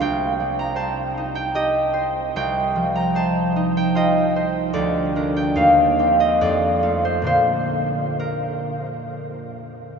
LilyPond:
\new Staff \with { instrumentName = "Harp" } { \time 3/4 \key bes \major \tempo 4 = 75 << { <c'' g''>8. bes''16 a''8. g''16 ees''4 | g''8. bes''16 a''8. g''16 ees''4 | d''8. g''16 f''8. ees''16 d''8. c''16 | c''4 bes'2 | } \\ { c,8 g8 c''8 ees'8 g'8 c''8 | c,8 f8 c''8 ees'8 f'8 c''8 | d,8 <d' bes'>8 ees,8 <c' g'>8 f,8 <a f'>8 | <bes, d bes f'>2. | } >> }